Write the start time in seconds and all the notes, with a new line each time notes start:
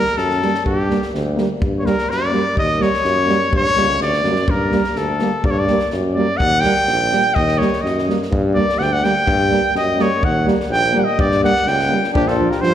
Already playing: A#4
0.06 snare
0.17 F#2 A4, snare
0.30 snare
0.42 G3 A#3, snare
0.54 snare
0.65 G2 G4, kick
0.89 G3 A#3, snare
1.02 snare
1.14 D2, snare
1.36 G3 A#3, snare
1.61 G2, kick
1.79 A#3 C#5
1.85 G3 A#4, snare
1.98 snare
2.10 F#2 D5, snare
2.31 G3 A#3
2.56 D#2 D#5, kick
2.79 G3 A#3 C#5, snare
2.94 snare
3.05 F#2, snare
3.27 G3 A#3, snare
3.53 G2 C#5, kick
3.66 snare
3.75 C#2 G3 A#3, snare
3.90 snare
4.01 D2 D5, snare
4.13 snare
4.23 F#2 G3 A#3, snare
4.36 snare
4.48 G2 A#4, kick
4.70 G3 A#3, snare
4.84 snare
4.96 D2 A4, snare
5.19 G3 A#3, snare
5.44 G2 D5, kick
5.51 C#5
5.59 D5
5.67 G3 A#3, snare
5.79 snare
5.90 F#2, snare
6.14 G3 A#3 D5
6.37 D#2 F#5, kick
6.60 G3 A#3 G5, snare
6.76 snare
6.88 A#1, snare
7.12 G3 A#3, snare
7.34 D#2 D#5, kick
7.48 snare
7.58 G3 A#3 C#5, snare
7.73 snare
7.81 F#2 D#5
7.86 snare
7.98 snare
8.07 G3 A#3, snare
8.22 snare
8.31 G2, kick
8.54 G3 A#3 D5
8.69 snare
8.79 D2 F#5, snare
8.83 G5
8.93 F#5
9.03 G3 A#3 G5, snare
9.27 G2, kick
9.50 G3 A#3
9.75 F#2 D#5, snare
9.97 G3 A#3, snare
10.02 C#5
10.22 D#2 F#5, kick
10.45 G3 A#3, snare
10.60 snare
10.70 A#1 G5, snare
10.93 G3 A#3
10.99 F#5
11.04 D#5
11.19 G2 D5, kick
11.32 snare
11.43 G3 A#3 F#5, snare
11.56 snare
11.67 C#2 G5, snare
11.80 snare
11.88 G3 A#3
12.04 snare
12.13 A#1 F3 D4 G4, kick
12.28 F4 A4, snare
12.38 F3 D4
12.50 G4 A#4, snare
12.61 G2 F3 D4 F4 C5, snare